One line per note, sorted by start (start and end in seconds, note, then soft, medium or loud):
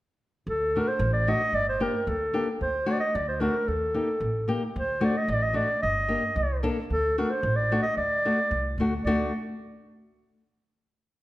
0.47 0.79 D2 medium
0.47 0.76 A4 medium
0.75 0.89 A3 soft
0.75 0.89 D4 soft
0.75 0.89 F#4 medium
0.75 0.89 A#4 medium
0.88 1.13 C5 medium
0.99 1.32 A1 medium
1.13 1.30 D5 medium
1.27 1.41 A3 medium
1.27 1.41 D4 soft
1.27 1.41 F#4 medium
1.27 1.56 D#5 loud
1.53 1.85 G1 medium
1.53 1.68 D5 loud
1.69 1.84 C5 medium
1.80 1.94 A#3 medium
1.80 1.94 D4 soft
1.80 1.94 G4 medium
1.80 2.09 A#4 medium
2.07 2.39 D2 medium
2.07 2.48 A4 medium
2.33 2.47 A#3 medium
2.33 2.47 D4 medium
2.33 2.47 G4 medium
2.61 2.93 D2 medium
2.61 2.89 C5 medium
2.86 3.01 A3 medium
2.86 3.00 D4 medium
2.86 3.00 F#4 medium
2.86 2.99 D5 medium
3.00 3.17 D#5 medium
3.15 3.47 D2 medium
3.15 3.28 D5 medium
3.28 3.42 C5 medium
3.40 3.54 A3 medium
3.40 3.54 D4 medium
3.40 3.54 F#4 medium
3.40 3.69 A#4 medium
3.68 4.00 D#2 medium
3.68 4.48 A4 medium
3.94 4.08 A#3 medium
3.94 4.08 D#4 soft
3.94 4.08 G4 soft
4.20 4.53 A1 medium
4.48 4.61 A#3 medium
4.48 4.61 D#4 medium
4.48 4.61 G4 medium
4.76 5.08 D2 medium
4.76 5.06 C5 medium
5.00 5.14 A3 medium
5.00 5.14 D4 soft
5.00 5.14 F#4 medium
5.05 5.19 D5 medium
5.17 5.32 D#5 medium
5.28 5.60 A1 medium
5.28 5.44 D5 medium
5.43 5.58 D#5 medium
5.53 5.68 A3 soft
5.53 5.68 D4 soft
5.53 5.68 F#4 medium
5.53 5.82 D5 medium
5.82 6.15 G1 medium
5.82 6.59 D#5 medium
6.08 6.22 A#3 soft
6.08 6.22 D4 soft
6.08 6.22 G4 medium
6.36 6.68 C2 medium
6.63 6.76 A#3 medium
6.63 6.76 D4 medium
6.63 6.77 A4 medium
6.90 7.22 D2 medium
6.90 7.16 A4 medium
7.18 7.31 A3 soft
7.18 7.31 D4 medium
7.18 7.31 F#4 medium
7.18 7.32 A#4 medium
7.30 7.58 C5 medium
7.43 7.76 A1 medium
7.56 7.82 D5 medium
7.72 7.84 A3 medium
7.72 7.85 D4 soft
7.72 7.85 F#4 medium
7.82 7.96 D#5 medium
7.97 8.29 D2 medium
7.97 8.74 D5 medium
8.25 8.38 A3 medium
8.25 8.38 D4 soft
8.25 8.38 F#4 medium
8.51 8.75 C2 medium
8.78 9.02 D2 medium
8.78 8.93 A3 medium
8.78 8.92 D4 medium
8.78 8.93 F#4 medium
9.05 9.30 D2 medium
9.05 9.31 A3 medium
9.05 9.32 D4 medium
9.05 9.31 F#4 medium
9.05 9.30 D5 medium